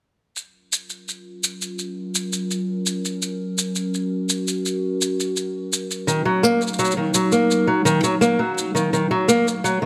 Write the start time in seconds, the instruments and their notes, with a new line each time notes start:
0.36 ambient pad F#3 C#4 F4 A#4, shaker
0.73 shaker
0.90 shaker
1.08 shaker
1.44 shaker
1.62 shaker
1.79 shaker
2.15 shaker
2.33 shaker
2.51 shaker
2.86 shaker
3.05 shaker
3.22 ambient pad F#4, shaker
3.58 shaker
3.76 shaker
3.94 shaker
4.29 shaker
4.48 shaker
4.66 shaker
5.02 shaker
5.20 shaker
5.37 shaker
5.73 shaker
5.91 shaker
6.07 steel-string acoustic guitar D#3, ambient pad F#3 D#4, shaker
6.25 steel-string acoustic guitar F#3
6.43 steel-string acoustic guitar A#3, shaker
6.61 shaker
6.67 shaker
6.73 shaker
6.79 steel-string acoustic guitar F#3, shaker
6.85 shaker
6.91 shaker
6.97 steel-string acoustic guitar D#3
7.14 steel-string acoustic guitar F#3, shaker
7.32 steel-string acoustic guitar A#3, shaker
7.51 shaker
7.67 steel-string acoustic guitar F#3
7.85 steel-string acoustic guitar D#3, shaker
8.04 steel-string acoustic guitar F#3, shaker
8.21 steel-string acoustic guitar A#3, shaker
8.39 steel-string acoustic guitar F#3
8.58 shaker
8.75 steel-string acoustic guitar D#3, shaker
8.93 steel-string acoustic guitar D#3, shaker
9.11 steel-string acoustic guitar F#3
9.28 steel-string acoustic guitar A#3, shaker
9.48 shaker
9.64 steel-string acoustic guitar F#3, shaker
9.82 steel-string acoustic guitar D#3